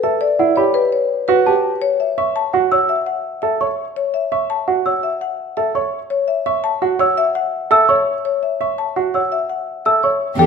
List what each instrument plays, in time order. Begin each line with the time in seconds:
0.03 grand piano A4, marimba E5
0.21 marimba D5
0.39 grand piano E4, celesta F#5
0.56 grand piano G4, marimba C#5, celesta B5
0.74 marimba B4
0.92 marimba C#5
1.28 grand piano F#4, marimba B4
1.47 grand piano G4, celesta A5
1.82 marimba C#5
2.00 marimba E5
2.18 grand piano E5, marimba C#6
2.36 marimba A5
2.53 grand piano F#4, celesta F#5
2.72 grand piano C#5, marimba F#5, celesta E6
2.89 marimba E5
3.06 marimba F#5
3.42 grand piano A4, marimba E5
3.61 grand piano C#5, celesta C#6
3.96 marimba C#5
4.14 marimba E5
4.32 grand piano E5, marimba C#6
4.50 marimba A5
4.68 grand piano F#4, celesta F#5
4.86 grand piano C#5, marimba F#5, celesta E6
5.03 marimba E5
5.21 marimba F#5
5.57 grand piano A4, marimba E5
5.75 grand piano C#5, celesta C#6
6.10 marimba C#5
6.28 marimba E5
6.46 grand piano E5, marimba C#6
6.64 marimba A5
6.82 grand piano F#4, celesta F#5
6.99 grand piano C#5, marimba F#5, celesta E6
7.18 marimba E5
7.35 marimba F#5
7.71 grand piano A4, marimba E5, celesta E6
7.89 grand piano C#5, marimba C#5, celesta C#6
8.25 marimba C#5
8.43 marimba E5
8.61 grand piano E5, marimba C#6
8.78 marimba A5
8.96 grand piano F#4, celesta F#5
9.14 grand piano C#5, marimba F#5, celesta E6
9.32 marimba E5
9.49 marimba F#5
9.85 grand piano A4, marimba E5, celesta E6
10.03 marimba C#5, grand piano C#5, celesta C#6
10.39 cello E2, string section D4 G4, french horn G4, marimba A4, celesta G5